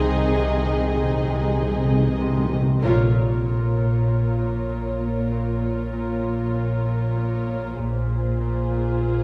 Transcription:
Already playing: C2 C3 D#3 C4 D#4 G#4 D#5
0.04 C3
0.13 C3
0.20 C3
0.27 C3
0.35 C3
0.42 C3
0.50 C3
0.57 C3
0.66 C3
0.73 C3
0.81 C3
0.88 C3
0.95 C3 C4
1.02 C3
1.09 C3
1.17 C3
1.25 C3
1.33 C3
1.41 C3
1.48 C3
1.55 C3
1.59 C3 C4
1.70 C3
1.77 C3
1.85 C3
1.90 C3 C4
2.00 C3
2.08 C3
2.15 C3
2.21 C3
2.30 C3
2.38 C3
2.46 C3
2.52 C3
2.61 C3
2.68 C3
2.82 A#1 A#2 F4 A#4 C#5
3.14 A#2
3.46 A#2
3.77 A#2
4.07 A#2
4.38 A#2
4.69 A#2
5.00 A#3
5.31 A#2
5.62 A#2
5.93 A#2
6.23 A#2
6.54 A#2
6.85 A#2
7.16 A#2
7.47 A#3
7.76 A#1 A#2 F4 G#4 C5
8.09 A#2
8.40 A#2
8.71 A#2
9.02 A#2

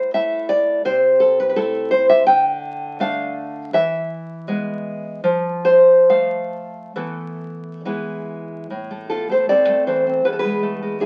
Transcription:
Already playing: A2 C5
0.14 A3 E4 E5
0.49 D5
0.85 C3 C5
1.20 A4
1.40 B4
1.49 B4
1.56 A3 E4 A4
1.91 C5
2.09 E5
2.26 D3 G5
3.00 A3 D4 F5
3.73 E3 E5
4.48 G#3 B3
5.24 F3
5.65 C5
6.10 A3 F5
6.96 E3 A3 B3 A4
7.85 E3 G#3 B3
8.70 A2
8.91 A3
9.10 B3 F4 A4
9.30 A3 A4 C5
9.49 C4 A4 D5
9.69 A3
9.87 E3 A4 C5
10.07 C4
10.25 E2 B4
10.32 A4
10.39 G#4 B4
10.44 G#3
10.63 A3
10.82 G#3
11.00 D4 E4 G#4

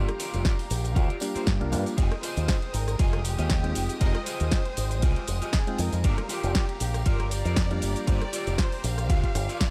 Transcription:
Already playing: G4 F5 A#5
0.09 cross-stick, closed hi-hat
0.19 F4 G4 A#4 D5, open hi-hat, tambourine, shaker
0.34 F1, closed hi-hat, tambourine, shaker
0.45 kick, snare, closed hi-hat, tambourine, shaker
0.59 open hi-hat
0.70 A#1, open hi-hat, tambourine, shaker
0.84 muted clean electric guitar stroke, closed hi-hat, tambourine, shaker
0.95 D2 F4 G4 A#4 D5, kick, closed hi-hat, tambourine, shaker
1.10 closed hi-hat
1.20 G3 A#3 D4 F4 G4, open hi-hat, tambourine, shaker
1.35 F4 G4 A#4 C5, muted fingered electric bass stroke, closed hi-hat, tambourine, shaker
1.47 G2, kick, snare, closed hi-hat, shaker
1.60 C2 G3 A#3 D4 F4 A#4, muted clean electric guitar stroke, closed hi-hat
1.71 G2 G3 A#3 D4 F4 G4, open hi-hat, tambourine, shaker
1.86 muted clean electric guitar stroke, closed hi-hat, tambourine, shaker
1.97 F1 G#3 C4 D#4 F4 G4 G#4 D#5 G5 D#6, kick, closed hi-hat, ride, tambourine, shaker
2.12 cross-stick, closed hi-hat
2.23 F4 G4 G#4 C5 D#5, open hi-hat, tambourine, shaker
2.37 D#2, closed hi-hat, tambourine, shaker
2.48 kick, snare, closed hi-hat, ride, tambourine, shaker
2.62 closed hi-hat
2.74 G#1 A#4, open hi-hat, tambourine, shaker
2.88 muted clean electric guitar stroke, cross-stick, closed hi-hat, tambourine, shaker
2.99 F1 F4 G4 G#4 D#5, kick, closed hi-hat, ride, tambourine, shaker
3.13 cross-stick, closed hi-hat
3.25 G4, open hi-hat, tambourine, shaker
3.38 D#2 F4 G4 G#4 D#5, closed hi-hat, tambourine, shaker
3.50 kick, snare, closed hi-hat, ride, tambourine, shaker
3.63 G#3 C4 D#4 F4 G5, muted clean electric guitar stroke, closed hi-hat
3.75 F1, open hi-hat, tambourine, shaker
3.89 muted clean electric guitar stroke, closed hi-hat, tambourine, shaker
4.00 F1 G#3 C4 D#4 F4 G4 G#4 A#4 D#5, kick, closed hi-hat, ride, tambourine, shaker
4.15 cross-stick, closed hi-hat
4.26 F4 G4 G#4 C5 D#5, open hi-hat, tambourine, shaker
4.40 D#2, closed hi-hat, tambourine, shaker
4.51 kick, snare, closed hi-hat, ride, tambourine, shaker
4.65 closed hi-hat
4.77 G#1, open hi-hat, tambourine, shaker
4.91 muted clean electric guitar stroke, closed hi-hat, tambourine, shaker
5.02 C2 F4 G4 G#4 D#5, kick, closed hi-hat, ride, tambourine, shaker
5.16 closed hi-hat
5.28 F1, open hi-hat, tambourine, shaker
5.42 F4 G4 G#4 D#5, closed hi-hat, tambourine, shaker
5.53 G#4, kick, snare, closed hi-hat, ride, tambourine, shaker
5.67 G#3 C4 D#4 F4 G5, muted clean electric guitar stroke, closed hi-hat
5.79 F2 A#4, open hi-hat, tambourine, shaker
5.93 F2, muted clean electric guitar stroke, closed hi-hat, tambourine, shaker
6.04 G1 G3 A#3 D4 F4 G4 A#4 D5 F5 A#5, kick, closed hi-hat, ride, tambourine, shaker
6.18 cross-stick, closed hi-hat
6.29 F4 G4 A#4 D5, open hi-hat, tambourine, shaker
6.43 F1, closed hi-hat, tambourine, shaker
6.55 kick, snare, closed hi-hat, ride, tambourine, shaker
6.69 closed hi-hat
6.80 A#1 G4, open hi-hat, tambourine, shaker
6.94 muted clean electric guitar stroke, cross-stick, closed hi-hat, tambourine, shaker
7.06 G1 F4 G4 A#4 D5, kick, closed hi-hat, ride, tambourine, shaker
7.20 cross-stick, closed hi-hat
7.31 D5, open hi-hat, tambourine, shaker
7.45 F2 F4 G4 A#4 D5, closed hi-hat, tambourine, shaker
7.56 kick, snare, closed hi-hat, ride, tambourine, shaker
7.70 G3 A#3 D4 F4 G4, muted clean electric guitar stroke, closed hi-hat
7.82 G1, open hi-hat, tambourine, shaker
7.96 muted clean electric guitar stroke, closed hi-hat, tambourine, shaker
8.07 G1 G3 A#3 D4 F4 G4 A#4 C5 D5 G5, kick, closed hi-hat, ride, tambourine, shaker
8.21 cross-stick, closed hi-hat
8.33 F4 G4 A#4 D5, open hi-hat, tambourine, shaker
8.47 F1, closed hi-hat, tambourine, shaker
8.58 C5, kick, snare, closed hi-hat, ride, tambourine, shaker
8.72 open hi-hat
8.84 A#1 F5, open hi-hat, tambourine, shaker
8.98 muted clean electric guitar stroke, cross-stick, closed hi-hat, tambourine, shaker
9.09 D2 F4 G4 A#4 F5, kick, closed hi-hat, ride, tambourine, shaker
9.24 kick, closed hi-hat
9.35 G1, cross-stick, open hi-hat, tambourine, shaker
9.48 F4 G4 A#4 D5, closed hi-hat, tambourine, shaker
9.60 D5, kick, snare, closed hi-hat, ride, tambourine, shaker

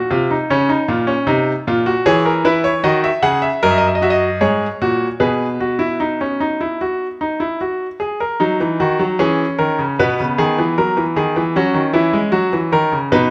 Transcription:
0.11 C3 F4
0.31 D#4
0.50 C#3 C#4
0.69 D#4
0.88 A#2 F4
1.07 C#4
1.27 C3 D#4
1.67 A#2 F4
1.86 F#4
2.06 E3 G#4 C#5
2.26 A#4
2.45 E4 B4
2.64 C#5
2.84 D#3 F#4 D#5
3.04 E5
3.22 C#3 G#4 F#5
3.42 E5
3.63 F#2 A#4 D#5
3.71 E5
3.78 D#5
3.87 E5
3.95 D#5
4.02 F#4 E5
4.10 D#5
4.41 G#2 G#4 C#5
4.81 A#2 F#4
5.20 B2 G#4 B4
5.60 F#4
5.79 E4
6.00 D#4
6.21 C#4
6.40 D#4
6.61 E4
6.81 F#4
7.21 D#4
7.40 E4
7.61 F#4
8.00 G#4
8.20 A#4
8.40 F#3 D#4
8.60 E3
8.80 D#3 F#4
8.99 F#3
9.19 E3 C#4 G#4
9.59 D#3 A#4
9.79 C#3
9.99 B2 B3 B4
10.20 C#3
10.38 D#3 G#4
10.58 E3
10.78 F#3 A#4
10.97 E3
11.16 D#3 G#4
11.36 E3
11.56 F#3 C#4 F#4
11.74 D#3
11.93 E3 E4
12.13 G#3
12.32 F#3 F#4
12.53 E3
12.72 D#3 A#4
12.92 C#3
13.12 B2 D#4 B4

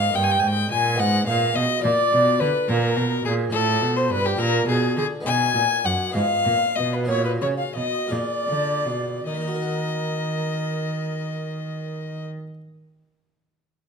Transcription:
Already playing: G#2 F5
0.10 A#3 D#4 A#4
0.14 G2 G5
0.23 G#5
0.31 G5
0.40 G#2 G#5
0.48 G5
0.70 A#2 G#5
0.94 B3 D#4 G#4 F#5
0.98 G#2 F#5
1.27 A#2 F5
1.55 B2 D#5
1.79 A#3 F4 D5
1.84 A#2 D5
2.12 B2
2.39 D3 B4
2.68 A#2 A#4
2.97 B2
3.24 A#2 G#4
3.50 A2 C4 F4 A4
3.81 B2
3.96 C5
4.10 G2 B4
4.26 G4
4.36 A#2 D4 F4 A#4
4.41 A#4
4.67 B2 G#4
4.96 D3 G#4
5.21 B3 D#4
5.25 B2 G#5
5.54 A#2
5.84 F#2 F#5
6.10 B3 D#4 F4
6.14 G#2 F5
6.45 A#2
6.76 B2 D#5
6.92 B4
7.04 A#3 D#4 F#4 C#5
7.08 A#2
7.23 B4
7.40 C#3 C#5
7.56 F5
7.74 B2 D#5
8.07 A#3 F4 G#4 D5
8.11 A#2 D5
8.48 D3
8.86 B2
9.26 D#3 A#4 D#5
9.34 A#3
9.40 D#4
9.48 F#4
9.55 A#4
9.62 F#5

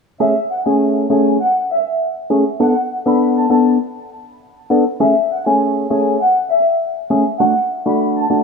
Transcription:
0.20 A3 C#4 G#4 E5
0.50 F#5
0.66 A3 C#4 G#4 G#5
1.10 A3 C#4 G#4 G#5
1.40 F#5
1.70 E5
2.30 A3 C#4 G#4
2.60 B3 D4 A4 F#5
3.06 B3 D4 A4 B5
3.37 A5
3.50 B3 D4 A4 A5
4.70 B3 D4 A4
5.00 A3 C#4 G#4 E5
5.30 F#5
5.46 A3 C#4 G#4 G#5
5.90 A3 C#4 G#4 G#5
6.21 F#5
6.51 E5
7.10 A3 C#4 G#4
7.40 A3 D4 F#4 F#5
7.86 A3 D4 F#4 B5
8.16 A5
8.30 A3 D4 F#4 A5

